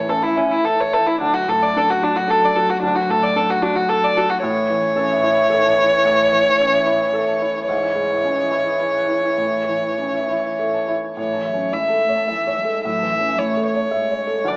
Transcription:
Already playing: A2 E3 C#5 E5 A5
0.08 C#4 A4
0.22 E4 E5
0.36 C#4 E4 C#5
0.51 E4 E5
0.64 A4
0.79 C#5 A5
0.92 E4 A4 C#5
1.06 E4 C#5
1.20 D2 F#3 D4
1.34 F#4
1.48 A2 A4
1.62 D5
1.74 D4 A4
1.87 F#4 A4
2.01 D4 F#4
2.15 F#4 A4
2.28 D4 A4
2.41 D5
2.55 F#4 A4
2.70 F#4
2.82 D2 D4
2.95 F#4
3.09 A2 A4
3.23 D5
3.35 D4 A4
3.49 F#4 A4
3.62 D4 F#4
3.75 F#4 A4
3.89 D4 A4
4.02 D5
4.15 F#4 A4
4.29 F#4
4.42 A2 E3 A4 C#5
4.55 C#5
4.70 E3
4.95 C#4 A4
5.11 E5
5.24 E4 C#5
5.37 E5
5.50 A4
5.65 A5
5.78 E4 C#5
5.92 C#5
6.05 A2 A4
6.32 E3
6.59 C#4 A4
6.74 E5
6.86 E4 C#5
7.00 E5
7.13 A4
7.28 A5
7.41 E4 C#5
7.55 C#5
7.67 G#2 E3 C#4 C#5
7.82 E4
7.95 G#3
8.24 C#4
8.38 G#4
8.51 E4
8.66 G#4
8.79 C#4 B4
8.95 B4
9.08 E4
9.25 E4
9.38 A2
9.54 C#5
9.69 E3
9.98 C#4
10.14 E5
10.29 E4 C#5
10.44 E5
10.59 A4
10.73 A5
10.88 E4 C#5
11.04 C#5
11.17 A2 E3 C#5
11.32 E3 A5
11.45 F#3 E5
11.54 C#4
11.73 G#3 E4 E5
11.87 A4 A5
12.02 A3
12.09 C#5
12.15 A5
12.28 E3 E5 A5
12.47 C#5
12.57 G#3
12.65 A4
12.84 A2 F#3 E5
12.98 A5
13.03 E3
13.12 E3 E5
13.20 C#4
13.38 A3 E4 C#5
13.52 C#6
13.57 A4
13.67 C#5
13.75 C#5
13.91 G#3 E5
14.11 C#5
14.27 A4
14.45 D2 D4 D5
14.49 F#3

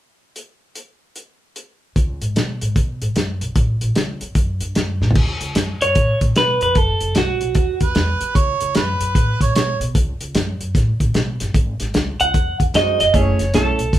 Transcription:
0.36 closed hi-hat
0.75 closed hi-hat
1.16 closed hi-hat
1.56 closed hi-hat
1.96 C#2, kick, closed hi-hat
2.21 G#2, closed hi-hat
2.36 B2, snare, closed hi-hat
2.61 G#2, closed hi-hat
2.76 B2, kick, closed hi-hat
3.02 G#2, closed hi-hat
3.16 F#2, snare, closed hi-hat
3.41 B1, closed hi-hat
3.56 A1, kick, closed hi-hat
3.81 A1, closed hi-hat
3.95 C#2, snare, closed hi-hat
4.21 E2, closed hi-hat
4.35 F#2, kick, closed hi-hat
4.61 G2, closed hi-hat
4.75 F#2, snare, closed hi-hat
5.01 A2, snare
5.11 floor tom
5.15 C#2, kick, crash
5.41 C#2, closed hi-hat
5.55 F#2, snare, closed hi-hat
5.81 F#2 C#5, closed hi-hat
5.95 A2, kick, closed hi-hat
6.21 A2, kick, closed hi-hat
6.36 B2 B4, snare, closed hi-hat
6.61 F2 B4, closed hi-hat
6.75 F#1 A4, kick, closed hi-hat
7.01 F#1, closed hi-hat
7.15 B1 F#4, snare, closed hi-hat
7.41 B1, closed hi-hat
7.55 D#2, kick, closed hi-hat
7.81 D#2 B4, kick, closed hi-hat
7.95 E2, snare, closed hi-hat
8.21 D#2, closed hi-hat
8.35 C#2 C#5, kick, closed hi-hat
8.61 C#2, closed hi-hat
8.75 F#2 B4, snare, closed hi-hat
9.01 F#2, closed hi-hat
9.15 A2, kick, closed hi-hat
9.41 A2 C#5, kick, closed hi-hat
9.55 B2 C#5, snare, closed hi-hat
9.80 B2, closed hi-hat
9.95 C#2, kick, closed hi-hat
10.21 C#2, closed hi-hat
10.35 F#2, snare, closed hi-hat
10.60 F#2, closed hi-hat
10.75 A2, kick, snare, closed hi-hat
11.00 A2, kick, closed hi-hat
11.14 B2, snare, closed hi-hat
11.40 G1, snare, closed hi-hat
11.54 G#1, kick, closed hi-hat
11.80 G#1, snare, closed hi-hat
11.94 C#2, snare, closed hi-hat
12.20 C#2 F#5, closed hi-hat
12.34 E2, kick, closed hi-hat
12.60 E2, kick, closed hi-hat
12.74 F#2 G#3 C4 D#4 F#4 D#5, snare, closed hi-hat
13.00 F1 D#5, snare, closed hi-hat
13.13 F#1 A3 C#4 E4 G#4 C#5, kick, closed hi-hat
13.39 F#1, snare, closed hi-hat
13.54 B1 A3 C#4 E4 A4, snare, closed hi-hat
13.79 B1, closed hi-hat
13.93 D#2, kick, snare, closed hi-hat

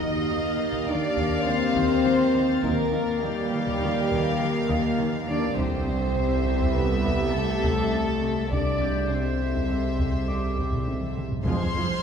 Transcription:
Already playing: D#2 D#4 G4 A#4 D#5 F5 A#5 F6 A#6
0.00 D#3
0.29 D#3 A6
0.59 D#3
0.73 taiko
0.87 D#3 D4 D5
1.16 D#3, taiko
1.45 D#3 C4 C5 A6
1.76 D#3, taiko
2.06 D#3 G5 C7
2.35 D#3
2.63 D#2 D#3 A#3 G4 A#4 F5, taiko
2.93 D#3
3.22 D#3 G3 G4
3.53 D#3
3.67 taiko
3.82 D#3
4.11 D#3, taiko
4.41 D#3
4.70 D#3, taiko
4.99 D#3
5.28 D#3 D4 D5
5.57 C2 C3 C4 G4 A4 C5 E5, taiko
5.87 C3
6.16 C3
6.46 C3
6.61 taiko
6.75 C3 B3 B4
7.05 C3, taiko
7.34 C3 A3 A4
7.64 C3, taiko
7.93 C3
8.22 C3
8.51 C2 C3 D4 G4 A4 D5 E5, taiko
8.81 C3 G6
9.10 C3 C4 C5
9.40 C3
9.55 taiko
9.69 C3
9.99 C3, taiko
10.27 C3 D5 D6
10.58 C3, taiko
10.73 taiko low-mid
10.87 C3, taiko high
11.02 taiko mid
11.17 C3, taiko mid
11.32 taiko low
11.45 F1 F2 F3 G#3 C4 F4 G#4 C5 C6 F6 G#6 C7, taiko
11.76 F1 F2 G#3 F4

